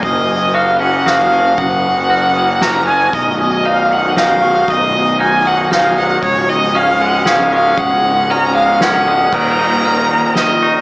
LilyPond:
<<
  \new Staff \with { instrumentName = "Glockenspiel" } { \time 3/4 \key b \lydian \tempo 4 = 116 dis'''4 eis'''4 dis'''8 cis'''8 | dis'''4 eis'''8 dis'''8 eis'''8 dis'''8 | dis'''4 eis'''4 dis'''8 cis'''8 | dis'''4 eis'''8 dis'''8 eis'''8 dis'''8 |
dis'''4 eis'''4 dis'''8 cis'''8 | dis'''4 eis'''8 dis'''8 eis'''8 dis'''8 | dis'''4 eis'''4 dis'''8 cis'''8 | }
  \new Staff \with { instrumentName = "Violin" } { \time 3/4 \key b \lydian dis''4 eis''8 fis''8 eis''4 | fis''2 ais''8 gis''8 | dis''8 dis''8 eis''8 fis''8 eis''4 | dis''4 gis''8 fis''8 eis''8 fis''8 |
cis''8 dis''8 eis''8 fis''8 eis''8 eis''8 | fis''4 ais''8 eis''8 fis''4 | ais''2 dis''4 | }
  \new Staff \with { instrumentName = "Clean electric guitar" } { \time 3/4 \key b \lydian fis,4 fis'8 cis'8 fis'8 cis'8 | fis,4 fis'8 cis'8 fis'8 cis'8 | b,,4 dis'8 fis8 dis'8 fis8 | b,,4 dis'8 fis8 dis'8 fis8 |
cis,4 cis'8 gis8 cis'8 gis8 | cis,4 cis'8 gis8 cis'8 gis8 | dis,8 dis'8 dis8 ais,8 dis8 dis'8 | }
  \new Staff \with { instrumentName = "String section" } { \clef bass \time 3/4 \key b \lydian << { fis'2.~ | fis'2.~ | fis'2.~ | fis'2.~ |
fis'2.~ | fis'2. | eis2. | } \\ { <cis ais>2.~ | <cis ais>2. | <dis b>2.~ | <dis b>2. |
<cis gis>2.~ | <cis gis>2. | <dis ais>2. | } >> }
  \new Staff \with { instrumentName = "Fingered electric bass" } { \clef bass \time 3/4 \key b \lydian fis,,2. | fis,,2. | b,,,2. | b,,,2. |
cis,,2. | cis,,2. | dis,,2 r4 | }
  \new DrumStaff \with { instrumentName = "Drums" } \drummode { \time 3/4 <bd cymr>4 cymr4 <cymr sn>4 | <bd cymr>4 cymr4 sn8 cymr8 | <bd cymr>4 cymr4 <cymr sn>4 | <bd cymr>4 cymr4 <cymr sn>8 cymr8 |
bd4 cymr4 <cymr sn>4 | <bd cymr>4 cymr4 sn8 cymr8 | <cymc bd>8 cymr8 cymr4 <cymr sn>4 | }
>>